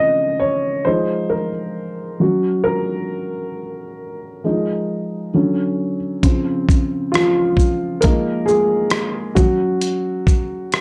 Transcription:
Already playing: upright piano C#3 F3 C4 D#5
0.40 upright piano C#5
0.85 upright piano F3 G#3 D#4 C5
1.30 upright piano A#4
2.20 upright piano F#3 C#4 F#4
2.64 upright piano A#4
4.44 upright piano F3 G#3 D#4
5.34 upright piano D3 F#3 C#4
6.23 upright piano C#3 F3 C4, kick, closed hi-hat
6.69 kick, shaker
7.12 upright piano F3 F4, cross-stick, closed hi-hat
7.57 kick, shaker
8.01 upright piano F3 G#3 A#3 D#4 A#4, kick, closed hi-hat
8.46 upright piano G#3 G#4, shaker
8.90 cross-stick, closed hi-hat
9.35 upright piano F#3 C#4 F#4, kick, shaker
9.81 closed hi-hat
10.27 kick, shaker
10.72 cross-stick, closed hi-hat

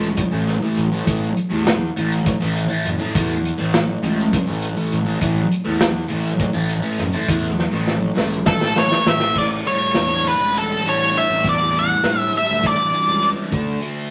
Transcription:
Already playing: picked electric bass C#2
0.03 maracas
0.17 muted distorted electric guitar stroke, kick, closed hi-hat
0.32 picked electric bass A1, distorted electric guitar A2 E3 A3
0.48 snare, closed hi-hat
0.62 distorted electric guitar A2 E3 A3
0.77 picked electric bass A1, closed hi-hat
0.92 distorted electric guitar A2 E3 A3
1.06 picked electric bass A1, distorted electric guitar A2 E3 A3, kick, closed hi-hat, maracas
1.37 closed hi-hat, maracas
1.50 picked electric bass E2, distorted electric guitar A2 E3 A3
1.67 snare, closed hi-hat
1.96 picked electric bass A1, distorted electric guitar A2 E3 A3, closed hi-hat
2.12 maracas
2.26 muted distorted electric guitar stroke, kick, closed hi-hat
2.41 picked electric bass A1, distorted electric guitar A2 E3 A3
2.56 closed hi-hat, maracas
2.69 distorted electric guitar A2 E3 A3, maracas
2.85 picked electric bass F#1, closed hi-hat, maracas
2.98 distorted electric guitar A2 E3 A3
3.13 picked electric bass E2, distorted electric guitar A2 E3 A3, kick, closed hi-hat, maracas
3.45 closed hi-hat, maracas
3.58 picked electric bass A1, distorted electric guitar A2 E3 A3
3.74 snare, closed hi-hat
4.02 picked electric bass C#2, distorted electric guitar A2 E3 A3, closed hi-hat
4.20 maracas
4.33 muted distorted electric guitar stroke, kick, snare, closed hi-hat
4.47 picked electric bass A1, distorted electric guitar A2 E3 A3
4.62 closed hi-hat, maracas
4.76 distorted electric guitar A2 E3 A3, maracas
4.92 picked electric bass A1, closed hi-hat, maracas
5.06 distorted electric guitar A2 E3 A3
5.19 picked electric bass A1, distorted electric guitar A2 E3 A3, kick, closed hi-hat, maracas
5.52 closed hi-hat, maracas
5.65 picked electric bass E2, distorted electric guitar A2 E3 A3
5.81 snare, closed hi-hat
6.08 picked electric bass A1, distorted electric guitar A2 E3 A3, closed hi-hat
6.27 maracas
6.40 muted distorted electric guitar stroke, kick, snare, closed hi-hat
6.53 picked electric bass A1, distorted electric guitar A2 E3 A3
6.69 closed hi-hat, maracas
6.82 distorted electric guitar A2 E3 A3
6.86 maracas
6.99 picked electric bass F#1, snare, closed hi-hat
7.13 distorted electric guitar A2 E3 A3
7.28 picked electric bass E2, distorted electric guitar A2 E3 A3, kick, closed hi-hat, maracas
7.59 snare
7.71 picked electric bass A1, distorted electric guitar A2 E3 A3
7.87 snare
8.15 picked electric bass C#2, distorted electric guitar A2 E3 A3, snare
8.33 maracas
8.46 lead electric guitar A4, muted distorted electric guitar stroke, kick, snare
8.58 distorted electric guitar A2 E3 A3, snare
8.63 picked electric bass A1
8.76 lead electric guitar C#5, snare
8.89 distorted electric guitar A2 E3 A3, snare
9.07 picked electric bass A1, lead electric guitar E5, snare
9.18 distorted electric guitar A2 E3 A3, snare
9.34 picked electric bass A1, distorted electric guitar A2, lead electric guitar D5, kick, crash
9.65 distorted electric guitar G3, lead electric guitar C#5, closed hi-hat
9.94 picked electric bass E2, distorted electric guitar D4, snare, closed hi-hat
10.24 distorted electric guitar G3, lead electric guitar B4, closed hi-hat
10.41 picked electric bass C#2
10.54 distorted electric guitar E3, lead electric guitar A4, closed hi-hat
10.84 picked electric bass A1, distorted electric guitar G3, closed hi-hat
10.89 lead electric guitar C#5
11.13 distorted electric guitar D4, closed hi-hat
11.18 lead electric guitar E5
11.30 picked electric bass A1
11.42 picked electric bass E2, distorted electric guitar A2, kick, closed hi-hat
11.49 lead electric guitar D5
11.72 distorted electric guitar G3, closed hi-hat
11.79 lead electric guitar F#5
12.03 picked electric bass A2, distorted electric guitar D4, snare, closed hi-hat
12.20 lead electric guitar E5
12.33 distorted electric guitar G3, closed hi-hat
12.38 lead electric guitar E5
12.50 picked electric bass D2
12.62 distorted electric guitar E3, kick, closed hi-hat
12.67 lead electric guitar D5
12.91 distorted electric guitar G3, closed hi-hat
13.08 picked electric bass C#2
13.21 distorted electric guitar D4, closed hi-hat
13.51 picked electric bass D2, distorted electric guitar D3, kick, closed hi-hat
13.81 distorted electric guitar A3, closed hi-hat

